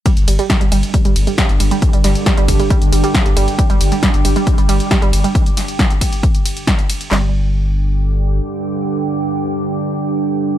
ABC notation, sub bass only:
X:1
M:4/4
L:1/16
Q:1/4=136
K:Cm
V:1 name="Sub bass" clef=bass
z G,,, G,,, z2 G,,, G,,, z2 G,,, G,,, z2 G,,, G,,, z | z G,,, G,,, z2 G,,, G,,, z2 G,,, G,,, z2 G,,, G,,, z | z G,,, G,,, z2 G,,, G,,, z2 G,,, G,,, z2 G,,, G,,, z | z16 |
G,,,12 z4 | z16 |]